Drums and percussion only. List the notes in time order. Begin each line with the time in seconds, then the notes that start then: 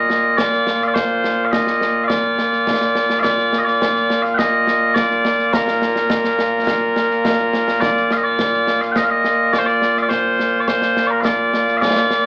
0.10 snare
0.38 concert bass drum, snare
0.52 snare
0.67 snare
0.82 snare
0.96 concert bass drum, snare
1.24 snare
1.53 concert bass drum, snare
1.67 snare
1.81 snare
2.10 concert bass drum, snare
2.38 snare
2.53 snare
2.67 concert bass drum, snare
2.81 snare
2.95 snare
3.10 snare
3.24 concert bass drum, snare
3.38 snare
3.53 snare
3.67 snare
3.82 concert bass drum, snare
3.96 snare
4.10 snare
4.25 snare
4.39 concert bass drum, snare
4.67 snare
4.96 concert bass drum, snare
5.11 snare
5.25 snare
5.39 snare
5.53 concert bass drum, snare
5.68 snare
5.82 snare
5.96 snare
6.10 concert bass drum, snare
6.24 snare
6.39 snare
6.67 concert bass drum, snare
6.96 snare
7.11 snare
7.25 concert bass drum, snare
7.53 snare
7.68 snare
7.82 concert bass drum, snare
7.97 snare
8.11 snare
8.39 concert bass drum, snare
8.53 snare
8.67 snare
8.82 snare
8.96 concert bass drum, snare
9.24 snare
9.53 concert bass drum, snare
9.68 snare
9.82 snare
9.97 snare
10.11 concert bass drum, snare
10.40 snare
10.68 concert bass drum, snare
10.82 snare
10.97 snare
11.25 concert bass drum, snare
11.54 snare
11.68 snare
11.82 concert bass drum, snare
11.96 snare
12.11 snare